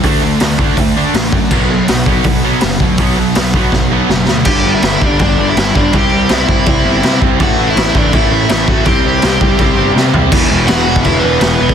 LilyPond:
<<
  \new Staff \with { instrumentName = "Lead electric guitar" } { \time 4/4 \key e \minor \tempo 4 = 164 r1 | r1 | r1 | <g' g''>8. <e' e''>8. <d' d''>8 <d' d''>8. <e' e''>8. <d' d''>8 |
<g' g''>4 <e' e''>2~ <e' e''>8 r8 | <fis' fis''>8. <e' e''>8. <d' d''>8 <e' e''>4 <e' e''>8 <fis' fis''>8 | <g' g''>2. r4 | r4 <fis' fis''>4 <e' e''>8 <b b'>4 <b b'>8 | }
  \new Staff \with { instrumentName = "Distorted electric guitar" } { \clef bass \time 4/4 \key e \minor <d a d'>8 <d a d'>8 <d a d'>8 <d a d'>8 <d a d'>8 <d a d'>8 <d a d'>8 <d a d'>8 | <b, fis b>8 <b, fis b>8 <b, fis b>8 <b, fis b>8 <b, fis b>8 <b, fis b>8 <b, fis b>8 <b, fis b>8 | <b, fis b>8 <b, fis b>8 <b, fis b>8 <b, fis b>8 <b, fis b>8 <b, fis b>8 <b, fis b>8 <b, fis b>8 | <g, d g>1 |
<c g c'>1 | <a, e a>1 | <c g c'>1 | <e, b, e>4. <e, b, e>2~ <e, b, e>8 | }
  \new Staff \with { instrumentName = "Distorted electric guitar" } { \clef bass \time 4/4 \key e \minor <d a d'>8 <d a>8 <d a>8 <d a d'>8 <d a>8 <d a d'>8 <d a>8 <d a>8 | <b, fis b>8 <b, fis>8 <b, fis>8 <b, fis b>8 <b, fis>8 <b, fis b>8 <b, fis>8 <b, fis>8 | <b, fis b>8 <b, fis>8 <b, fis>8 <b, fis b>8 <b, fis>8 <b, fis b>8 <b, fis>8 <b, fis>8 | <g, d g>8 <g, d g>8 <g, d g>8 <g, d g>8 <g, d g>8 <g, d g>8 <g, d g>8 <g, d g>8 |
<c g c'>8 <c g c'>8 <c g c'>8 <c g c'>8 <c g c'>8 <c g c'>8 <c g c'>8 <c g c'>8 | <a, e a>8 <a, e a>8 <a, e a>8 <a, e a>8 <a, e a>8 <a, e a>8 <a, e a>8 <a, e a>8 | <c g c'>8 <c g c'>8 <c g c'>8 <c g c'>8 <c g c'>8 <c g c'>8 <c g c'>8 <c g c'>8 | <e, b, e>8 <e, b, e>8 <e, b, e>8 <e, b, e>8 <e, b, e>8 <e, b, e>8 <e, b, e>8 <e, b, e>8 | }
  \new Staff \with { instrumentName = "Distorted electric guitar" } { \clef bass \time 4/4 \key e \minor <d a d'>8 <d a>8 <d a>8 <d a d'>8 <d a>8 <d a d'>8 <d a>8 <d a>8 | <b, fis b>8 <b, fis>8 <b, fis>8 <b, fis b>8 <b, fis>8 <b, fis b>8 <b, fis>8 <b, fis>8 | <b, fis b>8 <b, fis>8 <b, fis>8 <b, fis b>8 <b, fis>8 <b, fis b>8 <b, fis>8 <b, fis>8 | <g, d g>8 <g, d g>8 <g, d g>8 <g, d g>8 <g, d g>8 <g, d g>8 <g, d g>8 <g, d g>8 |
<c g c'>8 <c g c'>8 <c g c'>8 <c g c'>8 <c g c'>8 <c g c'>8 <c g c'>8 <c g c'>8 | <a, e a>8 <a, e a>8 <a, e a>8 <a, e a>8 <a, e a>8 <a, e a>8 <a, e a>8 <a, e a>8 | <c g c'>8 <c g c'>8 <c g c'>8 <c g c'>8 <c g c'>8 <c g c'>8 <c g c'>8 <c g c'>8 | <e, b, e>8 <e, b, e>8 <e, b, e>8 <e, b, e>8 <e, b, e>8 <e, b, e>8 <e, b, e>8 <e, b, e>8 | }
  \new Staff \with { instrumentName = "Picked electric bass" } { \clef bass \time 4/4 \key e \minor d,4 d,8 d,8 d,4 a,,8 fis,8 | b,,4 b,,8 b,,8 b,,4 fis,,8 d,8 | b,,4 b,,8 b,,8 b,,4 fis,,8 d,8 | g,,4 g,,8 g,,8 g,,8 g,,8 g,,8 g,,8 |
c,8 c,8 c,8 c,8 c,8 g,,8 c8 c,8 | a,,4 a,,8 a,,8 a,,8 a,,8 a,,8 a,,8 | c,8 c,8 c,8 c,8 c,8 g,,8 c8 c,8 | e,,8 e,,8 e,,4 e,,8 e,,8 e,,8 e,,8 | }
  \new DrumStaff \with { instrumentName = "Drums" } \drummode { \time 4/4 <hho bd>4 <hho sn>8 bd8 <hho bd>4 <hho sn>8 bd8 | <cymc bd>4 <hho sn>8 bd8 <hho bd>4 <hho sn>8 bd8 | <hho bd>4 <hho sn>8 bd8 <bd sn>4 sn8 sn8 | <cymc bd>4 <cymc sn>8 bd8 <cymc bd>4 <cymc sn>8 bd8 |
<cymc bd>4 <cymc sn>8 bd8 <cymc bd>4 <cymc sn>8 bd8 | <cymc bd>4 <cymc sn>8 bd8 <cymc bd>4 <cymc sn>8 bd8 | <cymc bd>4 <cymc sn>8 bd8 <cymc bd>4 sn8 tomfh8 | <cymc bd>4 <cymc sn>8. bd16 <cymc bd>4 <cymc sn>8. bd16 | }
>>